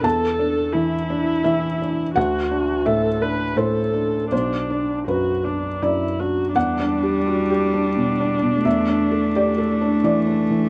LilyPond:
<<
  \new Staff \with { instrumentName = "Viola" } { \time 3/4 \key e \minor \tempo 4 = 85 a'4 e'2 | fis'4 a'8 b'8 a'4 | d'4 fis'8 d'8 e'8 fis'8 | d'2.~ |
d'2. | }
  \new Staff \with { instrumentName = "Felt piano" } { \time 3/4 \key e \minor << { a''2 e''8 r8 | fis''4 e''4 c''4 | c''4 b'4 d''4 | fis''2. |
e''4 d''4 d''4 | } \\ { e,8 d'8 e8 d'8 e8 d'8 | d,8 d'8 a,8 d'8 a,8 d'8 | b,,8 d'8 fis,8 d'8 fis,8 d'8 | \tuplet 3/2 { e,8 d'8 g'8 fis'8 g'8 d'8 b,8 d'8 b,8 } |
\tuplet 3/2 { e,8 d'8 a'8 g'8 a'8 d'8 e8 d'8 e8 } | } >> }
  \new Staff \with { instrumentName = "Cello" } { \clef bass \time 3/4 \key e \minor r2. | r2. | r2. | g2. |
a2. | }
>>